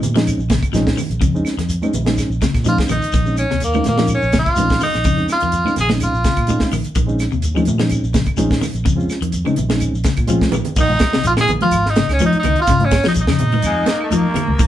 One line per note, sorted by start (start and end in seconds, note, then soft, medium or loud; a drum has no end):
0.01 0.31 A#2 medium
0.01 closed hi-hat medium
0.01 low conga medium
0.01 shekere medium
0.14 0.28 F3 medium
0.14 0.38 G#3 medium
0.14 0.38 C4 medium
0.14 0.39 C#4 medium
0.14 0.39 D#4 loud
0.14 snare medium
0.14 high conga medium
0.14 shekere soft
0.27 closed hi-hat medium
0.27 claves medium
0.27 shekere medium
0.38 0.58 A#1 medium
0.38 shekere soft
0.50 0.63 C#3 medium
0.50 kick medium
0.50 snare medium
0.50 closed hi-hat soft
0.50 high conga medium
0.50 shekere medium
0.63 kick medium
0.63 closed hi-hat soft
0.63 claves medium
0.63 shekere soft
0.73 0.92 A#1 medium
0.73 0.86 F3 medium
0.73 0.97 G#3 loud
0.73 0.98 C4 medium
0.73 0.98 C#4 medium
0.73 0.98 D#4 loud
0.73 snare soft
0.73 closed hi-hat medium
0.73 high conga medium
0.73 shekere medium
0.87 kick medium
0.87 snare medium
0.87 shekere soft
0.97 1.10 D#3 medium
0.97 open hi-hat medium
0.97 low conga medium
0.97 claves medium
0.97 shekere medium
1.10 1.19 A#1 medium
1.10 closed hi-hat soft
1.10 shekere soft
1.21 1.41 F2 loud
1.21 1.34 C#3 medium
1.21 kick medium
1.21 closed hi-hat medium
1.21 high conga soft
1.21 shekere medium
1.34 1.53 G#3 medium
1.34 1.53 C4 medium
1.34 1.53 C#4 medium
1.34 1.53 D#4 medium
1.34 shekere soft
1.45 snare soft
1.45 closed hi-hat soft
1.45 claves medium
1.45 shekere medium
1.57 1.77 F2 medium
1.57 1.71 D#3 medium
1.57 snare soft
1.57 closed hi-hat medium
1.57 shekere soft
1.69 closed hi-hat medium
1.69 high conga soft
1.69 shekere medium
1.82 1.91 G#3 medium
1.82 1.91 C4 medium
1.82 1.92 C#4 medium
1.82 1.92 D#4 loud
1.82 high conga medium
1.82 claves medium
1.82 shekere soft
1.93 2.23 A#1 medium
1.93 closed hi-hat medium
1.93 low conga medium
1.93 shekere medium
2.05 2.20 D#3 medium
2.05 2.29 G#3 medium
2.05 2.29 C4 medium
2.05 2.29 C#4 medium
2.05 2.30 D#4 medium
2.05 snare medium
2.05 high conga medium
2.05 shekere soft
2.17 snare soft
2.17 closed hi-hat medium
2.17 high conga soft
2.17 claves medium
2.17 shekere medium
2.28 2.38 A#1 medium
2.28 shekere soft
2.41 2.55 C#3 medium
2.41 kick medium
2.41 snare medium
2.41 closed hi-hat soft
2.41 high conga medium
2.41 shekere medium
2.54 2.73 A#2 medium
2.54 kick medium
2.54 snare soft
2.54 closed hi-hat medium
2.54 claves medium
2.54 shekere soft
2.64 2.79 F3 medium
2.64 2.88 G#3 medium
2.64 2.88 C4 medium
2.64 2.88 C#4 medium
2.64 2.89 D#4 medium
2.64 closed hi-hat medium
2.64 high conga medium
2.64 shekere medium
2.69 2.79 F4 medium
2.78 kick medium
2.78 snare medium
2.78 high conga medium
2.78 shekere soft
2.88 3.00 A#1 medium
2.88 3.02 D#3 medium
2.88 3.35 D#4 medium
2.88 closed hi-hat medium
2.88 low conga medium
2.88 claves medium
2.88 shekere medium
3.02 closed hi-hat soft
3.02 shekere soft
3.12 3.43 A#1 medium
3.12 3.26 D#3 medium
3.12 kick medium
3.12 closed hi-hat medium
3.12 high conga soft
3.12 shekere medium
3.26 3.44 G#3 medium
3.26 3.44 C4 medium
3.26 3.44 C#4 medium
3.26 3.44 D#4 medium
3.26 shekere soft
3.37 3.60 C#4 medium
3.37 closed hi-hat medium
3.37 claves medium
3.37 shekere medium
3.51 3.79 D#2 medium
3.51 3.63 C3 medium
3.51 snare soft
3.51 shekere soft
3.60 3.85 A#3 medium
3.60 closed hi-hat medium
3.60 high conga soft
3.60 shekere medium
3.74 3.87 D#3 medium
3.74 3.82 G#3 medium
3.74 3.83 C4 medium
3.74 3.83 C#4 medium
3.74 3.83 D#4 medium
3.74 high conga medium
3.74 claves medium
3.74 shekere soft
3.84 4.15 A#2 medium
3.84 snare soft
3.84 closed hi-hat medium
3.84 high conga medium
3.84 low conga medium
3.84 shekere medium
3.88 4.09 A#3 medium
3.97 4.11 F3 medium
3.97 4.20 G#3 medium
3.97 4.21 C4 medium
3.97 4.21 C#4 medium
3.97 4.21 D#4 medium
3.97 snare medium
3.97 high conga medium
3.97 shekere soft
4.07 closed hi-hat medium
4.07 high conga soft
4.07 claves medium
4.07 shekere medium
4.14 4.34 C#4 medium
4.22 4.41 A#1 medium
4.22 shekere soft
4.32 4.47 C#3 medium
4.32 kick medium
4.32 snare medium
4.32 closed hi-hat soft
4.32 high conga medium
4.32 shekere medium
4.39 4.80 F4 medium
4.46 kick medium
4.46 closed hi-hat soft
4.46 claves medium
4.46 shekere soft
4.56 4.76 A#1 medium
4.56 4.70 F3 medium
4.56 4.79 G#3 medium
4.56 4.79 C4 medium
4.56 4.80 C#4 medium
4.56 4.80 D#4 medium
4.56 closed hi-hat medium
4.56 high conga medium
4.56 shekere medium
4.69 kick medium
4.69 snare medium
4.69 shekere soft
4.80 4.94 D#3 medium
4.80 5.26 D#4 loud
4.80 open hi-hat medium
4.80 low conga medium
4.80 claves medium
4.80 shekere medium
4.94 5.03 A#1 medium
4.94 snare soft
4.94 closed hi-hat soft
4.94 shekere soft
5.04 5.23 F2 loud
5.04 5.18 C#3 medium
5.04 kick loud
5.04 closed hi-hat medium
5.04 high conga soft
5.04 shekere medium
5.15 5.34 G#3 medium
5.15 5.35 C4 medium
5.15 5.35 C#4 medium
5.15 5.35 D#4 medium
5.15 shekere soft
5.29 5.75 F4 loud
5.29 snare soft
5.29 closed hi-hat medium
5.29 claves medium
5.29 shekere medium
5.40 5.61 F2 medium
5.40 5.55 D#3 medium
5.40 closed hi-hat soft
5.40 shekere soft
5.52 closed hi-hat medium
5.52 high conga soft
5.52 shekere medium
5.65 5.73 G#3 medium
5.65 5.74 C4 medium
5.65 5.74 C#4 medium
5.65 5.74 D#4 medium
5.65 muted clean electric guitar stroke medium
5.65 high conga medium
5.65 claves medium
5.65 shekere soft
5.76 6.06 A#1 medium
5.76 5.90 G#4 medium
5.76 snare soft
5.76 closed hi-hat medium
5.76 low conga medium
5.76 shekere medium
5.88 6.02 D#3 medium
5.88 6.11 G#3 medium
5.88 6.12 C4 medium
5.88 6.12 C#4 medium
5.88 6.13 D#4 medium
5.88 snare medium
5.88 high conga medium
5.88 shekere soft
6.00 6.69 F4 medium
6.00 closed hi-hat medium
6.00 high conga soft
6.00 claves medium
6.00 shekere medium
6.13 6.22 A#1 medium
6.13 shekere soft
6.24 6.38 C#3 medium
6.24 kick medium
6.24 snare medium
6.24 closed hi-hat soft
6.24 high conga medium
6.24 shekere medium
6.37 6.56 A#2 medium
6.37 kick medium
6.37 closed hi-hat medium
6.37 claves medium
6.37 shekere soft
6.47 6.71 G#3 medium
6.47 6.71 C4 medium
6.47 6.71 C#4 medium
6.47 6.72 D#4 medium
6.47 muted clean electric guitar stroke medium
6.47 closed hi-hat medium
6.47 high conga medium
6.47 shekere medium
6.60 kick medium
6.60 snare medium
6.60 high conga medium
6.60 shekere soft
6.71 6.82 A#1 loud
6.71 6.85 D#3 medium
6.71 open hi-hat medium
6.71 low conga medium
6.71 claves medium
6.71 shekere medium
6.84 muted fingered electric bass stroke soft
6.84 closed hi-hat soft
6.84 shekere soft
6.95 7.25 A#1 medium
6.95 7.09 D#3 medium
6.95 kick medium
6.95 closed hi-hat medium
6.95 high conga soft
6.95 shekere medium
7.07 7.25 G#3 medium
7.07 7.26 C4 medium
7.07 7.26 C#4 medium
7.07 7.26 D#4 medium
7.07 shekere soft
7.19 snare soft
7.19 closed hi-hat medium
7.19 claves medium
7.19 shekere medium
7.32 7.60 D#2 medium
7.32 7.45 C3 medium
7.32 shekere soft
7.42 closed hi-hat medium
7.42 high conga soft
7.42 shekere medium
7.55 7.69 F3 medium
7.55 7.64 G#3 medium
7.55 7.64 C4 medium
7.55 7.64 C#4 medium
7.55 7.64 D#4 medium
7.55 high conga medium
7.55 claves medium
7.55 shekere soft
7.65 7.96 A#2 medium
7.65 closed hi-hat medium
7.65 high conga medium
7.65 low conga medium
7.65 shekere medium
7.78 7.92 F3 medium
7.78 8.02 G#3 medium
7.78 8.02 C4 medium
7.78 8.02 C#4 medium
7.78 8.02 D#4 medium
7.78 snare medium
7.78 high conga medium
7.78 shekere soft
7.89 closed hi-hat medium
7.89 high conga soft
7.89 claves medium
7.89 shekere medium
8.03 8.22 A#1 medium
8.03 shekere soft
8.14 8.27 C#3 medium
8.14 kick medium
8.14 snare medium
8.14 closed hi-hat soft
8.14 high conga medium
8.14 shekere medium
8.26 kick medium
8.26 closed hi-hat soft
8.26 claves medium
8.26 shekere soft
8.37 8.57 A#1 medium
8.37 8.51 F3 medium
8.37 8.61 G#3 loud
8.37 8.61 C4 medium
8.37 8.62 C#4 medium
8.37 8.62 D#4 loud
8.37 closed hi-hat medium
8.37 high conga medium
8.37 shekere medium
8.51 kick medium
8.51 snare medium
8.51 shekere soft
8.61 8.74 D#3 medium
8.61 snare soft
8.61 open hi-hat medium
8.61 low conga medium
8.61 claves medium
8.61 shekere medium
8.74 8.83 A#1 medium
8.74 closed hi-hat soft
8.74 shekere soft
8.84 9.05 F2 loud
8.84 8.98 C#3 medium
8.84 kick medium
8.84 closed hi-hat medium
8.84 high conga soft
8.84 shekere medium
8.96 9.16 G#3 medium
8.96 9.16 C4 medium
8.96 9.16 C#4 medium
8.96 9.16 F4 medium
8.96 shekere soft
9.10 snare soft
9.10 closed hi-hat soft
9.10 claves medium
9.10 shekere medium
9.21 9.41 F2 medium
9.21 9.35 D#3 medium
9.21 closed hi-hat medium
9.21 shekere soft
9.32 closed hi-hat medium
9.32 high conga soft
9.32 shekere medium
9.45 9.59 C#3 medium
9.45 9.54 G#3 medium
9.45 9.55 C4 medium
9.45 9.55 C#4 medium
9.45 9.56 D#4 medium
9.45 high conga medium
9.45 claves medium
9.45 shekere soft
9.56 9.87 A#1 medium
9.56 closed hi-hat medium
9.56 low conga medium
9.56 shekere medium
9.69 9.83 D#3 medium
9.69 9.93 G#3 medium
9.69 9.93 C4 medium
9.69 9.93 C#4 medium
9.69 9.94 D#4 medium
9.69 snare medium
9.69 high conga medium
9.69 shekere soft
9.80 closed hi-hat medium
9.80 high conga soft
9.80 claves medium
9.80 shekere medium
9.93 10.03 A#1 medium
9.93 shekere soft
10.04 10.18 C#3 medium
10.04 kick medium
10.04 snare medium
10.04 closed hi-hat medium
10.04 high conga medium
10.04 shekere medium
10.17 10.37 A#2 medium
10.17 kick medium
10.17 closed hi-hat soft
10.17 claves medium
10.17 shekere soft
10.27 10.43 F3 medium
10.27 10.52 G#3 medium
10.27 10.52 C4 medium
10.27 10.52 C#4 medium
10.27 10.52 F4 loud
10.27 closed hi-hat medium
10.27 high conga medium
10.27 shekere medium
10.41 kick medium
10.41 snare medium
10.41 high conga medium
10.41 shekere soft
10.51 10.62 A#1 medium
10.51 10.67 D#3 medium
10.51 closed hi-hat medium
10.51 low conga medium
10.51 claves medium
10.51 shekere medium
10.65 closed hi-hat medium
10.65 low conga medium
10.65 shekere soft
10.76 10.96 A#1 medium
10.76 10.91 D#3 medium
10.76 11.22 D#4 medium
10.76 kick loud
10.76 crash medium
10.76 shekere medium
10.81 11.24 D#4 loud
10.89 high conga medium
10.99 kick medium
10.99 snare medium
10.99 closed hi-hat medium
10.99 high conga loud
10.99 claves medium
10.99 shekere soft
11.13 11.28 C3 medium
11.13 snare medium
11.23 11.34 A#1 medium
11.23 11.32 F4 medium
11.23 11.33 F4 medium
11.23 closed hi-hat medium
11.23 shekere medium
11.37 11.46 A#2 medium
11.37 11.51 D#3 medium
11.37 11.50 G#4 medium
11.37 11.51 G#4 medium
11.37 snare medium
11.37 claves medium
11.48 11.58 A#1 medium
11.48 closed hi-hat medium
11.48 low conga medium
11.48 shekere soft
11.60 11.75 F3 medium
11.60 11.91 F4 loud
11.60 11.90 F4 medium
11.60 muted fingered electric bass stroke soft
11.60 closed hi-hat soft
11.60 high conga medium
11.71 12.01 G#1 medium
11.71 closed hi-hat medium
11.71 claves medium
11.71 shekere medium
11.86 12.10 D#4 medium
11.86 12.12 D#4 medium
11.86 snare soft
11.96 12.10 C#3 medium
11.96 snare medium
11.96 closed hi-hat soft
11.96 high conga medium
11.96 shekere soft
12.08 12.18 C#2 medium
12.08 12.21 C#4 medium
12.08 snare soft
12.08 closed hi-hat soft
12.08 claves medium
12.13 12.22 C#4 medium
12.19 12.34 F3 medium
12.19 closed hi-hat medium
12.19 high conga medium
12.19 shekere medium
12.24 12.34 D#4 medium
12.24 12.35 D#4 medium
12.33 12.56 D#4 medium
12.33 muted fingered electric bass stroke soft
12.33 closed hi-hat soft
12.39 12.59 D#4 medium
12.39 closed hi-hat medium
12.44 12.54 C#2 loud
12.44 12.58 D#3 medium
12.44 low conga medium
12.44 claves medium
12.44 shekere soft
12.56 12.86 F4 medium
12.56 closed hi-hat soft
12.62 12.87 F4 medium
12.67 12.97 G#1 loud
12.67 12.82 C#3 medium
12.67 kick medium
12.67 snare soft
12.67 closed hi-hat medium
12.67 shekere medium
12.80 closed hi-hat soft
12.80 high conga medium
12.85 13.07 C#4 medium
12.91 kick medium
12.91 snare medium
12.91 closed hi-hat soft
12.91 high conga loud
12.91 claves medium
12.91 shekere soft
13.03 13.19 F3 medium
13.03 muted fingered electric bass stroke soft
13.03 snare medium
13.03 closed hi-hat soft
13.08 13.12 D#4 medium
13.14 13.29 A#1 medium
13.14 closed hi-hat medium
13.14 shekere medium
13.18 14.32 D#4 medium
13.18 14.34 D#4 medium
13.27 13.38 F2 medium
13.27 13.42 C#3 medium
13.27 snare medium
13.27 claves medium
13.39 13.64 A#2 medium
13.39 closed hi-hat medium
13.39 low conga medium
13.39 shekere soft
13.52 13.66 D#3 medium
13.52 closed hi-hat soft
13.52 high conga medium
13.62 13.83 F2 loud
13.62 13.90 G#3 loud
13.62 closed hi-hat medium
13.62 claves medium
13.62 shekere medium
13.86 14.01 A#3 loud
13.86 snare medium
13.86 closed hi-hat medium
13.86 high conga loud
13.86 shekere soft
14.01 14.67 A#3 loud
14.01 claves medium
14.11 14.25 F3 medium
14.11 closed hi-hat medium
14.11 high conga medium
14.11 shekere medium
14.34 14.49 D#3 medium
14.34 muted fingered electric bass stroke soft
14.34 closed hi-hat medium
14.34 low conga medium
14.34 claves medium
14.34 shekere soft
14.47 14.57 C#2 medium
14.47 high conga medium
14.59 14.67 A#1 loud
14.59 14.67 D#3 medium
14.59 kick loud
14.59 closed hi-hat medium
14.59 shekere medium